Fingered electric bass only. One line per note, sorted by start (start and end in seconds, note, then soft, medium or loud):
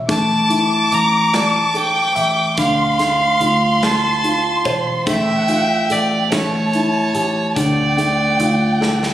0.09 0.88 A1 medium
0.92 2.13 A1 loud
2.16 2.55 A1 medium
2.58 3.37 D2 medium
3.40 4.61 D2 loud
4.66 5.04 E1 loud
5.07 5.86 A1 loud
5.91 6.29 A1 medium
6.32 7.11 A1 loud
7.15 7.54 A1 medium
7.57 8.35 D2 loud
8.40 9.14 D2 loud